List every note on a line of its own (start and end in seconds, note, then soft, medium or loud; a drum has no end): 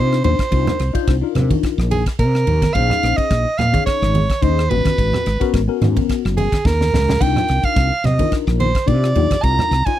0.00 0.21 C3 medium
0.00 0.16 D4 medium
0.00 0.16 D#4 medium
0.00 0.17 F4 medium
0.00 0.17 C5 medium
0.00 0.24 C5 medium
0.13 cross-stick medium
0.23 0.38 D#2 medium
0.23 0.44 D4 medium
0.23 0.44 D#4 medium
0.23 0.44 F4 medium
0.23 1.04 C5 medium
0.23 0.45 C5 medium
0.23 ride medium
0.23 low conga medium
0.39 kick medium
0.39 cross-stick medium
0.39 ride medium
0.51 0.66 C2 loud
0.51 0.81 D4 medium
0.51 0.81 D#4 medium
0.51 0.82 F4 medium
0.51 0.82 A#4 medium
0.51 kick medium
0.51 ride medium
0.67 cross-stick medium
0.67 low conga medium
0.79 0.93 C2 medium
0.79 cross-stick medium
0.79 ride medium
0.93 1.13 D4 medium
0.93 1.13 D#4 medium
0.93 1.14 F4 medium
0.93 1.14 C5 loud
0.93 kick medium
0.93 ride medium
1.08 1.21 C2 medium
1.08 kick loud
1.08 cross-stick medium
1.08 ride medium
1.22 2.00 D4 medium
1.22 2.01 D#4 medium
1.22 2.01 F4 medium
1.22 2.01 A#4 medium
1.35 1.49 C3 medium
1.35 cross-stick medium
1.35 ride medium
1.35 low conga medium
1.51 kick medium
1.51 ride medium
1.51 high conga medium
1.63 muted fretless electric bass stroke soft
1.63 kick medium
1.63 cross-stick medium
1.63 ride medium
1.78 2.03 A#1 medium
1.78 cross-stick medium
1.91 2.04 G#4 medium
1.91 ride medium
1.91 high conga medium
2.06 muted fretless electric bass stroke soft
2.06 kick medium
2.06 cross-stick medium
2.06 ride medium
2.19 2.44 C3 medium
2.19 2.75 A#4 medium
2.19 kick loud
2.19 ride medium
2.35 cross-stick medium
2.47 2.61 D#2 medium
2.47 ride medium
2.47 low conga medium
2.62 muted fretless electric bass stroke soft
2.62 kick medium
2.62 cross-stick medium
2.62 ride medium
2.62 high conga medium
2.74 2.89 A#1 loud
2.74 3.45 C#4 medium
2.74 3.45 D#4 medium
2.74 3.45 G#4 medium
2.74 3.45 C5 medium
2.74 3.19 F5 loud
2.74 kick medium
2.74 ride medium
2.90 cross-stick medium
2.90 low conga medium
3.03 3.17 A#1 medium
3.03 cross-stick medium
3.03 ride soft
3.17 3.60 D#5 medium
3.17 kick medium
3.17 ride medium
3.31 3.44 A#1 medium
3.31 kick loud
3.31 cross-stick medium
3.31 ride medium
3.58 3.73 A#2 medium
3.58 3.85 F5 medium
3.58 cross-stick medium
3.58 ride medium
3.58 low conga medium
3.72 4.22 C#4 medium
3.72 4.22 D#4 medium
3.72 4.22 G#4 medium
3.72 4.23 C#5 medium
3.72 kick medium
3.72 ride medium
3.72 high conga medium
3.86 4.44 C#5 medium
3.86 muted fretless electric bass stroke soft
3.86 kick medium
3.86 cross-stick medium
3.86 ride medium
4.02 4.27 G#1 medium
4.02 cross-stick medium
4.15 ride medium
4.15 high conga medium
4.30 kick medium
4.30 cross-stick medium
4.30 ride soft
4.42 4.67 D#2 medium
4.42 4.62 C#4 medium
4.42 4.63 D#4 medium
4.42 4.63 G#4 medium
4.42 4.71 C5 medium
4.42 4.63 D#5 medium
4.42 kick medium
4.42 ride medium
4.59 cross-stick medium
4.70 4.84 G#1 medium
4.70 5.26 B3 medium
4.70 5.26 C#4 medium
4.70 5.26 F#4 medium
4.70 5.54 B4 medium
4.70 5.27 B4 medium
4.70 ride medium
4.70 low conga medium
4.85 kick medium
4.85 cross-stick medium
4.85 ride medium
4.85 high conga medium
4.98 5.12 G#1 loud
4.98 kick medium
4.98 ride medium
5.13 cross-stick medium
5.13 low conga medium
5.26 5.40 G#1 medium
5.26 cross-stick medium
5.26 ride medium
5.40 5.60 B3 loud
5.40 5.60 C#4 medium
5.40 5.60 F#4 medium
5.40 5.60 A#4 loud
5.40 kick medium
5.40 ride medium
5.54 5.67 G#1 medium
5.54 kick loud
5.54 cross-stick medium
5.54 ride medium
5.67 6.46 B3 medium
5.67 6.47 C#4 medium
5.67 6.47 F#4 medium
5.67 6.47 A#4 medium
5.82 5.95 G#2 medium
5.82 cross-stick medium
5.82 ride medium
5.82 high conga medium
5.82 low conga medium
5.96 kick medium
5.96 ride medium
5.96 high conga medium
6.09 muted fretless electric bass stroke soft
6.09 kick medium
6.09 cross-stick medium
6.09 ride medium
6.25 6.50 F#1 medium
6.25 cross-stick medium
6.37 6.68 G#4 medium
6.37 ride medium
6.37 high conga medium
6.52 kick medium
6.52 cross-stick medium
6.52 ride medium
6.52 high conga soft
6.65 6.90 D#2 medium
6.65 7.24 A#4 medium
6.65 kick loud
6.65 snare medium
6.65 high conga medium
6.81 snare medium
6.81 high conga medium
6.93 7.19 C#2 medium
6.93 snare medium
6.93 low conga medium
7.08 snare medium
7.08 low conga medium
7.19 7.34 C2 medium
7.19 7.90 D4 medium
7.19 7.90 D#4 medium
7.19 7.90 F4 medium
7.19 7.91 A#4 medium
7.19 7.67 G5 loud
7.19 kick medium
7.19 ride soft
7.19 crash medium
7.36 cross-stick medium
7.36 low conga medium
7.48 7.63 C2 medium
7.48 cross-stick medium
7.48 ride medium
7.63 8.07 F5 medium
7.63 kick medium
7.63 ride medium
7.76 7.90 C2 medium
7.76 kick loud
7.76 cross-stick medium
7.76 ride medium
8.04 8.18 C3 medium
8.04 8.33 D#5 medium
8.04 cross-stick medium
8.04 ride medium
8.04 low conga medium
8.18 8.67 D4 medium
8.18 8.68 D#4 medium
8.18 8.68 F4 medium
8.18 8.68 A#4 medium
8.18 kick medium
8.18 ride medium
8.18 high conga medium
8.32 muted fretless electric bass stroke soft
8.32 kick medium
8.32 cross-stick medium
8.32 ride medium
8.47 8.72 A#1 medium
8.47 cross-stick medium
8.60 8.89 C5 medium
8.60 ride medium
8.60 high conga medium
8.75 kick medium
8.75 cross-stick medium
8.75 ride medium
8.86 9.13 C3 medium
8.86 9.07 D4 medium
8.86 9.08 D#4 medium
8.86 9.08 F4 medium
8.86 9.08 G4 medium
8.86 9.44 D5 medium
8.86 kick medium
8.86 ride soft
9.04 cross-stick medium
9.14 9.29 D#2 medium
9.14 9.35 D4 medium
9.14 9.36 D#4 medium
9.14 9.36 F4 medium
9.14 9.36 G4 medium
9.14 ride medium
9.14 low conga medium
9.31 kick medium
9.31 cross-stick medium
9.31 ride medium
9.31 high conga medium
9.43 9.57 C2 loud
9.43 9.73 D4 medium
9.43 9.73 D#4 medium
9.43 9.73 F4 medium
9.43 9.74 A#4 medium
9.43 9.87 A#5 loud
9.43 kick medium
9.43 ride medium
9.59 cross-stick medium
9.59 low conga medium
9.71 9.85 C2 medium
9.71 cross-stick medium
9.71 ride soft
9.86 9.99 D4 medium
9.86 9.99 D#4 medium
9.86 9.99 F4 medium
9.86 9.99 C5 medium
9.86 9.99 G#5 medium
9.86 kick medium
9.86 ride medium